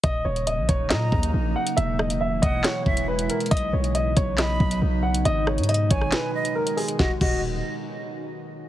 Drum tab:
CC |--------------------------------|--------------------------------|--------------------------------|--------------------------------|
HH |x-----x-x---x---x-----x-------x-|x-----x-----x---x-----x---x-x-xx|xx----x-x---x---x-----x-------x-|x-----xxxx--x---x-----x---x-o-x-|
CP |----------------x---------------|----------------x---------------|----------------x---------------|----------------x---------------|
SD |----------------o---------------|----r-----------o---------------|----------------o---------------|----r---------r-o---------------|
BD |o-----------o-------o-----------|------------o-------o-----------|o-----------o-------o-----------|------------o-------------------|

CC |----x---------------------------|
HH |--------------------------------|
CP |--------------------------------|
SD |o-------------------------------|
BD |o---o---------------------------|